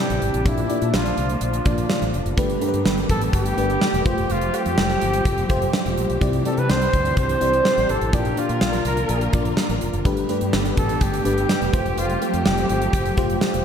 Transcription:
Already playing: C3 E3 G3 C4 D4 E4 G4 D5
0.00 G4
0.10 A1, closed hi-hat
0.22 G#1, closed hi-hat
0.34 A1, closed hi-hat
0.45 A#1 A#2 D3 F3 A#3 D4 E4 F4 D5, kick, closed hi-hat
0.57 closed hi-hat
0.69 A#3 D4 F4 D5, closed hi-hat
0.82 A#2, closed hi-hat
0.94 A#1 F4, snare
1.06 closed hi-hat
1.17 C2, closed hi-hat
1.29 closed hi-hat
1.41 A#1 F4, closed hi-hat
1.53 closed hi-hat
1.65 A#1 A#3 D4 F4 D5, kick, closed hi-hat
1.78 closed hi-hat
1.90 snare
2.02 A1, closed hi-hat
2.13 F1, closed hi-hat
2.25 F#1, closed hi-hat
2.37 G1 G2 G3 A3 B3 D4 G4 B4, kick, closed hi-hat
2.49 closed hi-hat
2.61 A3 D4 G4 A#4, closed hi-hat
2.68 B4
2.74 G2, closed hi-hat
2.86 G1, snare
2.98 closed hi-hat
3.09 A1 A4, kick, closed hi-hat
3.21 closed hi-hat
3.33 G1 G4, kick, closed hi-hat
3.46 closed hi-hat
3.57 G1 A3 D4 G4 B4, closed hi-hat
3.70 closed hi-hat
3.81 snare
3.93 E1, closed hi-hat
4.05 F1 F3 G3 A3 C4 F4 G4 C5, kick, closed hi-hat
4.18 E1, closed hi-hat
4.30 F1 F4, closed hi-hat
4.41 closed hi-hat
4.53 A3 F4 G4 C5, closed hi-hat
4.66 F2, closed hi-hat
4.78 F1, snare
4.90 closed hi-hat
5.01 G1, closed hi-hat
5.13 closed hi-hat
5.25 F1, kick, closed hi-hat
5.38 closed hi-hat
5.49 F1 A3 F4 G4 C5, kick, closed hi-hat
5.62 closed hi-hat
5.73 snare
5.85 E1, closed hi-hat
5.98 A#1, closed hi-hat
6.10 B1, closed hi-hat
6.21 C2 C3 E3 C4 D4 E4 G4 D5, kick, closed hi-hat
6.33 closed hi-hat
6.45 C4 E4 G4 A4 D5, closed hi-hat
6.58 C3 B4, closed hi-hat
6.70 C2 C5, snare
6.81 closed hi-hat
6.93 D2, kick, closed hi-hat
7.05 closed hi-hat
7.17 C2 C5, kick, closed hi-hat
7.29 closed hi-hat
7.41 C2 C4 E4 G4 D5, closed hi-hat
7.53 closed hi-hat
7.65 snare
7.77 A1, closed hi-hat
7.89 G#1 A4, closed hi-hat
8.01 A1, closed hi-hat
8.13 A#1 A#2 D3 F3 A#3 D4 F4 G4 A#4 D5, kick, closed hi-hat
8.25 closed hi-hat
8.36 A#3 D4 F4 D5, closed hi-hat
8.49 A#2, closed hi-hat
8.61 A#1, snare
8.73 closed hi-hat
8.85 C2 A#4, closed hi-hat
8.97 closed hi-hat
9.09 A#1, closed hi-hat
9.21 closed hi-hat
9.33 A#1 A#3 D4 F4 D5, kick, closed hi-hat
9.45 closed hi-hat
9.57 snare
9.69 A1, closed hi-hat
9.81 F1, closed hi-hat
9.93 F#1, closed hi-hat
10.05 G1 G2 D3 G3 A3 B3 D4 G4 B4, kick, closed hi-hat
10.17 closed hi-hat
10.29 A3 D4 G4 B4, closed hi-hat
10.41 G2, closed hi-hat
10.53 G1, snare
10.65 closed hi-hat
10.77 A1 A4, kick, closed hi-hat
10.89 closed hi-hat
11.01 G1 G4, kick, closed hi-hat
11.13 closed hi-hat
11.25 G1 A3 D4 G4 B4, closed hi-hat
11.38 closed hi-hat
11.49 snare
11.62 E1, closed hi-hat
11.73 F1 F3 G3 A3 C4 F4 G4 C5, kick, closed hi-hat
11.85 E1, closed hi-hat
11.97 F1 F4, closed hi-hat
12.10 closed hi-hat
12.21 A3 F4 G4 C5, closed hi-hat
12.34 F2, closed hi-hat
12.46 F1, snare
12.58 closed hi-hat
12.69 G1, closed hi-hat
12.82 closed hi-hat
12.93 F1, kick, closed hi-hat
13.05 closed hi-hat
13.17 F1 A3 F4 G4 C5, kick, closed hi-hat
13.30 closed hi-hat
13.41 G4, snare
13.54 E1, closed hi-hat

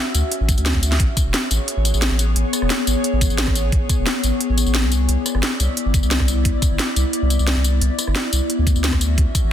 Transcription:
Already playing: C#4 F#4 E5
0.15 D2, closed hi-hat, tambourine
0.32 closed hi-hat
0.41 A1
0.49 kick, closed hi-hat, tambourine
0.58 D2, closed hi-hat, tambourine
0.66 snare, closed hi-hat
0.75 D2, kick
0.83 closed hi-hat, tambourine
0.92 snare, closed hi-hat
1.00 A1 B3 G#4 C#5, kick, closed hi-hat
1.17 kick, closed hi-hat, tambourine
1.26 E1
1.34 snare, closed hi-hat
1.51 A1, closed hi-hat, tambourine
1.68 closed hi-hat
1.77 A1
1.85 closed hi-hat, tambourine
1.94 A1, tambourine
2.02 snare, closed hi-hat
2.11 A1
2.19 closed hi-hat, tambourine
2.36 A1, closed hi-hat
2.53 cross-stick, closed hi-hat, tambourine
2.62 E1, cross-stick
2.70 snare, closed hi-hat
2.87 A1, closed hi-hat, tambourine
3.04 closed hi-hat
3.13 A1
3.21 kick, closed hi-hat, tambourine
3.30 A1, tambourine
3.38 snare, closed hi-hat
3.47 A1, kick, cross-stick
3.55 closed hi-hat, tambourine
3.72 A1, kick, closed hi-hat
3.89 kick, closed hi-hat, tambourine
3.98 E1
4.06 snare, closed hi-hat
4.24 A1, closed hi-hat, tambourine
4.41 closed hi-hat
4.50 A1
4.58 closed hi-hat, tambourine
4.66 A1, tambourine
4.75 snare, closed hi-hat
4.83 C2
4.92 E4 D5, closed hi-hat, tambourine
5.09 C2, closed hi-hat
5.26 cross-stick, closed hi-hat, tambourine
5.35 G1, cross-stick
5.43 snare, closed hi-hat
5.60 C2, closed hi-hat, tambourine
5.77 closed hi-hat
5.86 G1
5.94 kick, closed hi-hat, tambourine
6.03 C2, tambourine
6.11 snare, closed hi-hat
6.20 C2, kick, cross-stick
6.28 closed hi-hat, tambourine
6.45 C2, kick, closed hi-hat
6.62 kick, closed hi-hat, tambourine
6.71 G1
6.79 snare, closed hi-hat
6.96 C2, closed hi-hat, tambourine
7.13 closed hi-hat
7.22 C2
7.30 closed hi-hat, tambourine
7.39 C2, tambourine
7.47 snare, closed hi-hat
7.56 C2
7.64 closed hi-hat, tambourine
7.82 C2, closed hi-hat
7.99 cross-stick, closed hi-hat, tambourine
8.07 G1, cross-stick
8.15 snare, closed hi-hat
8.33 C2, closed hi-hat, tambourine
8.50 C#4 F#4 E5, closed hi-hat
8.59 D2
8.67 kick, closed hi-hat, tambourine
8.76 D2, tambourine
8.84 snare, closed hi-hat
8.93 D2, kick, cross-stick
9.01 closed hi-hat, tambourine
9.18 D2, kick, closed hi-hat
9.35 kick, closed hi-hat, tambourine
9.44 A1

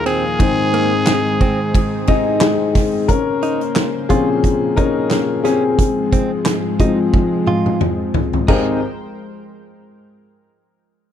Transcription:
Already playing: D#2 A#2 F3 A#3 D#4 F4 G#4
0.06 C4 G#4, ride
0.39 G#2 D#3 C4 D#4 G#4 C5, kick, ride
0.74 A#3, ride
1.07 snare, clap, ride
1.41 C4, kick, ride
1.75 kick, ride
2.07 C4 D#4 G#4 D#5, kick, ride
2.41 G#3 D#4, snare, clap, ride
2.75 kick, snare, open hi-hat, ride
3.08 C#3 A#3 C#4 A#4 C5, kick, closed hi-hat
3.43 D#4, closed hi-hat
3.61 closed hi-hat
3.76 snare, clap, closed hi-hat
4.09 A#2 F3 C4 C#4 F4 G#4, kick, closed hi-hat
4.44 kick, closed hi-hat
4.77 C#4 D#4 A#4, kick, closed hi-hat
5.11 snare, clap, closed hi-hat
5.44 C4 C#4 G#4, snare, closed hi-hat
5.78 G#2 F3 G#3, kick, closed hi-hat
6.12 C4, kick, closed hi-hat
6.45 snare, clap, closed hi-hat
6.79 F3 G#3 C4 D#4, kick, closed hi-hat
7.13 kick, high tom
7.47 F4, mid tom
7.66 mid tom
7.81 mid tom
8.14 floor tom
8.33 floor tom
8.48 G#1 G#3 C4 D#4 G4 G#4 A#4 C5 G5, kick, crash

